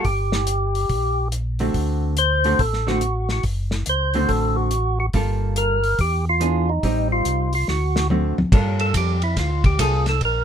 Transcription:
0.00 tonewheel organ F#4
0.05 tonewheel organ G1 G4, kick, open hi-hat
0.32 snare
0.47 closed hi-hat
0.75 open hi-hat
0.89 tonewheel organ A#1, kick, open hi-hat
1.32 closed hi-hat
1.59 hollow-body jazz guitar D3 A3 C4 F#4, open hi-hat
1.74 tonewheel organ D2, kick, open hi-hat
2.17 tonewheel organ C5, closed hi-hat
2.44 hollow-body jazz guitar D3 A3 C4 F#4, open hi-hat
2.59 tonewheel organ A1 A4, kick, open hi-hat
2.73 snare
2.87 hollow-body jazz guitar D3 A3 C4 F#4, tonewheel organ F#4, snare
3.01 closed hi-hat
3.29 tonewheel organ F#4, snare
3.43 tonewheel organ F#1, kick, open hi-hat
3.71 snare
3.86 tonewheel organ C#2 C5, closed hi-hat
4.14 hollow-body jazz guitar D3 A3 C4 F#4, open hi-hat
4.28 tonewheel organ A1 A4, kick, open hi-hat
4.56 tonewheel organ F#4
4.71 closed hi-hat
5.00 tonewheel organ F#4
5.13 tonewheel organ G1, hollow-body jazz guitar G3 A#3 F4 A4, kick, open hi-hat
5.56 tonewheel organ A#4, closed hi-hat
5.84 open hi-hat
5.99 tonewheel organ E2 G4, kick, open hi-hat
6.29 tonewheel organ F4
6.40 hollow-body jazz guitar E3 B3 D4 G#4, closed hi-hat
6.69 tonewheel organ D#4
6.83 tonewheel organ A1, hollow-body jazz guitar G3 C4 D#4, kick, open hi-hat
7.12 tonewheel organ F4
7.25 tonewheel organ C2, closed hi-hat
7.53 tonewheel organ F4, open hi-hat
7.68 tonewheel organ D2 F#4, snare
7.96 snare
8.10 hollow-body jazz guitar D3 A3 C4 F#4, high tom
8.38 tonewheel organ D2, high tom
8.52 tonewheel organ G2, hollow-body jazz guitar G3 A#3 F4 A4, kick, crash
8.79 tonewheel organ A4, ride
8.94 tonewheel organ F2 G4, kick, hi-hat pedal, ride
9.22 tonewheel organ E4, ride
9.37 tonewheel organ D2 F4, kick, snare, ride
9.64 tonewheel organ G4, kick, ride
9.79 tonewheel organ C2 G#4, hollow-body jazz guitar G3 A#3 F4 A4, kick, hi-hat pedal, ride
10.06 tonewheel organ A4, snare, ride
10.21 tonewheel organ A#1, kick, ride
10.25 tonewheel organ A#4

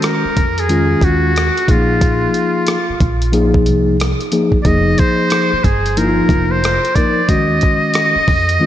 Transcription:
Already playing: tine electric piano D#3 G#3 C#4 F#4
0.00 muted trumpet A4, cross-stick, closed hi-hat
0.05 muted trumpet A#4
0.25 muted upright bass stroke
0.37 upright bass F2, kick, closed hi-hat
0.58 muted trumpet G#4, closed hi-hat
0.69 tine electric piano D#3 G#3 C#4 F4, closed hi-hat
1.01 upright bass D#2, muted trumpet F#4, kick, closed hi-hat
1.36 cross-stick, closed hi-hat
1.57 closed hi-hat
1.68 upright bass A#1, tine electric piano F3 A#3 D#4 G#4, muted trumpet F4, kick, closed hi-hat
2.01 kick, closed hi-hat
2.34 closed hi-hat
2.67 cross-stick, closed hi-hat
2.89 muted upright bass stroke
3.00 upright bass A#1, kick, closed hi-hat
3.22 closed hi-hat
3.32 tine electric piano F3 A#3 D#4 G#4, closed hi-hat
3.54 kick
3.66 upright bass C2, closed hi-hat
4.00 cross-stick, closed hi-hat
4.21 closed hi-hat
4.32 tine electric piano F3 A#3 D#4 G#4, closed hi-hat
4.52 kick
4.62 upright bass F1, tine electric piano F3 A#3 D#4 G#4, muted trumpet D5, kick, closed hi-hat
4.67 muted trumpet D#5
4.98 muted trumpet C5, kick, closed hi-hat
5.30 cross-stick, closed hi-hat
5.53 muted upright bass stroke
5.64 upright bass G1, muted trumpet G#4, kick, closed hi-hat
5.86 closed hi-hat
5.97 tine electric piano F3 A#3 D#4 E4, muted trumpet A#4, closed hi-hat
6.05 tine electric piano F4
6.29 upright bass F1, kick, closed hi-hat
6.51 muted trumpet C5
6.64 cross-stick, closed hi-hat
6.85 closed hi-hat
6.95 tine electric piano F3 A#3 D#4 A#4, muted trumpet D5, kick, closed hi-hat
7.29 upright bass D#2, tine electric piano D#3 G#3 C#4 F#4, muted trumpet D#5, kick, closed hi-hat
7.61 kick, closed hi-hat
7.94 cross-stick, closed hi-hat
8.16 muted upright bass stroke
8.28 upright bass F2, kick, open hi-hat
8.49 closed hi-hat
8.60 tine electric piano D#3 G#3 C#4 F4

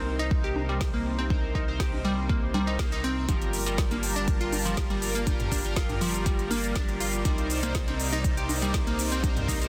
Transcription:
Already playing: analog synth bass C2, analog polysynth C3 D#4 A#4 C5
0.19 synth arpeggio sound D#4
0.31 kick
0.44 synth arpeggio sound G4
0.56 high conga
0.69 synth arpeggio sound G3
0.81 kick, snare
0.94 synth arpeggio sound A#3
1.19 synth arpeggio sound C4
1.30 analog polysynth C3 D#4 A#4 C5, kick, high conga
1.55 synth arpeggio sound D#4, kick
1.68 analog polysynth C3 D#4 A#4 C5
1.80 synth arpeggio sound G4, kick, snare
1.93 high conga
2.05 synth arpeggio sound G3
2.29 synth arpeggio sound A#3, kick
2.54 synth arpeggio sound G3, high conga
2.67 synth arpeggio sound D#4
2.79 analog polysynth C3 D#4 A#4 C5, synth arpeggio sound A#3, kick, snare
2.92 synth arpeggio sound D#4
3.04 synth arpeggio sound C4
3.29 analog synth bass G1, synth arpeggio sound F3, analog polysynth G3 F4 G4 A#4, supersaw synth G3 F4 A#4 D5 A5, kick, closed hi-hat, high conga, shaker
3.42 closed hi-hat
3.53 open hi-hat, shaker
3.66 analog polysynth G3 F4 G4 A#4, synth arpeggio sound G3, closed hi-hat, shaker
3.78 kick, snare, closed hi-hat, shaker
3.91 synth arpeggio sound A#3, closed hi-hat, high conga
4.03 open hi-hat, shaker
4.16 synth arpeggio sound D4, shaker
4.28 kick, closed hi-hat, shaker
4.41 synth arpeggio sound F4, closed hi-hat
4.52 open hi-hat, high conga, shaker
4.65 synth arpeggio sound F3, closed hi-hat, shaker
4.77 kick, snare, closed hi-hat, shaker
4.90 synth arpeggio sound G3, closed hi-hat
5.02 open hi-hat, shaker
5.15 synth arpeggio sound A#3, closed hi-hat, shaker
5.27 analog polysynth G3 F4 G4 A#4, kick, closed hi-hat, high conga, shaker
5.40 closed hi-hat, mid tom
5.52 synth arpeggio sound D4, kick, open hi-hat, shaker
5.65 analog polysynth G3 F4 G4 A#4, closed hi-hat, shaker
5.76 synth arpeggio sound F4, kick, snare, closed hi-hat, shaker
5.89 closed hi-hat, mid tom, high conga
6.01 synth arpeggio sound F3, open hi-hat, shaker
6.14 closed hi-hat, shaker
6.26 synth arpeggio sound G3, kick, closed hi-hat, shaker
6.39 closed hi-hat
6.51 synth arpeggio sound A#3, open hi-hat, high conga, shaker
6.64 closed hi-hat, shaker
6.76 synth arpeggio sound D4, kick, snare, closed hi-hat, shaker
6.89 closed hi-hat
7.00 synth arpeggio sound F4, open hi-hat, shaker
7.13 closed hi-hat, shaker
7.25 analog synth bass C2, supersaw synth C3 A#3 D#4, analog polysynth C3 D#4 A#4 C5, synth arpeggio sound G3, kick, closed hi-hat, high conga, shaker
7.38 closed hi-hat
7.50 open hi-hat, shaker
7.63 analog polysynth C3 D#4 A#4 C5, synth arpeggio sound A#3, closed hi-hat, shaker
7.75 kick, snare, closed hi-hat, shaker
7.88 synth arpeggio sound C4, closed hi-hat, high conga
8.00 open hi-hat, shaker
8.13 synth arpeggio sound D#4, closed hi-hat, shaker
8.24 kick, closed hi-hat, shaker
8.37 synth arpeggio sound G4, closed hi-hat
8.49 open hi-hat, high conga, shaker
8.62 synth arpeggio sound G3, closed hi-hat, shaker
8.74 kick, snare, closed hi-hat, shaker
8.87 synth arpeggio sound A#3, closed hi-hat
8.99 open hi-hat, shaker
9.12 synth arpeggio sound C4, closed hi-hat, shaker
9.24 analog polysynth C3 D#4 A#4 C5, kick, closed hi-hat, high conga, shaker
9.37 closed hi-hat, mid tom
9.48 synth arpeggio sound D#4, kick, open hi-hat, shaker
9.61 analog polysynth C3 D#4 A#4 C5, closed hi-hat, shaker

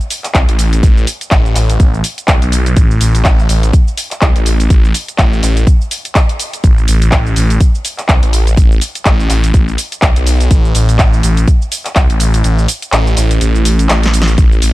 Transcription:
0.01 shaker
0.11 open hi-hat, shaker
0.24 clap, closed hi-hat, shaker
0.35 detuned saw bass C2, kick, clap, closed hi-hat, shaker
0.49 detuned saw bass A1, closed hi-hat, shaker
0.59 open hi-hat, shaker
0.73 closed hi-hat, shaker
0.83 detuned saw bass A1, kick, closed hi-hat, shaker
0.97 shaker
1.07 open hi-hat, shaker
1.21 closed hi-hat, shaker
1.31 detuned saw bass A1, kick, clap, closed hi-hat, shaker
1.46 shaker
1.55 detuned saw bass A1, clap, open hi-hat, shaker
1.70 closed hi-hat, shaker
1.80 detuned saw bass A1, kick, closed hi-hat, shaker
1.94 shaker
2.04 open hi-hat, shaker
2.18 closed hi-hat, shaker
2.28 detuned saw bass C2, kick, clap, closed hi-hat, shaker
2.42 detuned saw bass B1, closed hi-hat, shaker
2.52 open hi-hat, shaker
2.66 closed hi-hat, shaker
2.77 detuned saw bass A1, kick, closed hi-hat, shaker
2.91 shaker
3.01 detuned saw bass A1, open hi-hat, shaker
3.15 closed hi-hat, shaker
3.25 kick, clap, closed hi-hat, shaker
3.39 shaker
3.49 detuned saw bass A1, open hi-hat, shaker
3.63 closed hi-hat, shaker
3.73 kick, closed hi-hat, shaker
3.88 shaker
3.98 open hi-hat, shaker
4.11 clap, closed hi-hat, shaker
4.22 detuned saw bass C2, kick, clap, closed hi-hat, shaker
4.36 detuned saw bass A1, closed hi-hat, shaker
4.46 open hi-hat, shaker
4.60 closed hi-hat, shaker
4.70 detuned saw bass A1, kick, closed hi-hat, shaker
4.85 shaker
4.95 open hi-hat, shaker
5.08 closed hi-hat, shaker
5.18 detuned saw bass A1, kick, clap, closed hi-hat, shaker
5.33 shaker
5.43 detuned saw bass A1, clap, open hi-hat, shaker
5.57 closed hi-hat, shaker
5.67 kick, closed hi-hat, shaker
5.81 shaker
5.91 open hi-hat, shaker
6.05 closed hi-hat, shaker
6.15 kick, clap, closed hi-hat, shaker
6.29 closed hi-hat, shaker
6.40 open hi-hat, shaker
6.53 closed hi-hat, shaker
6.64 detuned saw bass A1, kick, closed hi-hat, shaker
6.78 shaker
6.88 detuned saw bass A1, open hi-hat, shaker
7.02 closed hi-hat, shaker
7.12 kick, clap, closed hi-hat, shaker
7.26 shaker
7.36 detuned saw bass A1, open hi-hat, shaker
7.50 closed hi-hat, shaker
7.61 kick, closed hi-hat, shaker
7.75 shaker
7.85 open hi-hat, shaker
7.98 clap, closed hi-hat, shaker
8.09 detuned saw bass C2, kick, clap, closed hi-hat, shaker
8.23 detuned saw bass A1, closed hi-hat, shaker
8.33 open hi-hat, shaker
8.47 closed hi-hat, shaker
8.57 detuned saw bass A1, kick, closed hi-hat, shaker
8.72 shaker
8.81 open hi-hat, shaker
8.95 closed hi-hat, shaker
9.05 detuned saw bass A1, kick, clap, closed hi-hat, shaker
9.20 shaker
9.30 detuned saw bass A1, clap, open hi-hat, shaker
9.44 closed hi-hat, shaker
9.54 detuned saw bass A1, kick, closed hi-hat, shaker
9.68 shaker
9.78 open hi-hat, shaker
9.92 closed hi-hat, shaker
10.02 detuned saw bass C2, kick, clap, closed hi-hat, shaker
10.16 detuned saw bass B1, closed hi-hat, shaker
10.27 open hi-hat, shaker
10.40 closed hi-hat, shaker
10.51 detuned saw bass A1, kick, closed hi-hat, shaker
10.65 shaker
10.75 detuned saw bass A1, open hi-hat, shaker
10.89 closed hi-hat, shaker
10.99 kick, clap, closed hi-hat, shaker
11.13 shaker
11.23 detuned saw bass A1, open hi-hat, shaker
11.37 closed hi-hat, shaker
11.48 kick, closed hi-hat, shaker
11.62 shaker
11.72 open hi-hat, shaker
11.85 clap, closed hi-hat, shaker
11.96 detuned saw bass C2, kick, clap, closed hi-hat, shaker
12.10 detuned saw bass A1, closed hi-hat, shaker
12.20 open hi-hat, shaker
12.34 closed hi-hat, shaker
12.44 detuned saw bass A1, closed hi-hat, shaker
12.59 shaker
12.68 open hi-hat, shaker
12.82 closed hi-hat, shaker
12.92 detuned saw bass A1, clap, closed hi-hat, shaker
13.07 shaker
13.17 detuned saw bass A1, clap, open hi-hat, shaker
13.31 closed hi-hat, shaker
13.41 detuned saw bass A1, closed hi-hat, shaker
13.55 shaker
13.65 open hi-hat, shaker
13.79 closed hi-hat, shaker
13.89 detuned saw bass A1, snare, clap, closed hi-hat, shaker
14.03 snare, closed hi-hat, shaker
14.14 open hi-hat, shaker
14.22 snare
14.28 closed hi-hat, shaker
14.38 detuned saw bass A1, kick, closed hi-hat, shaker
14.52 shaker
14.62 detuned saw bass A1, open hi-hat, shaker

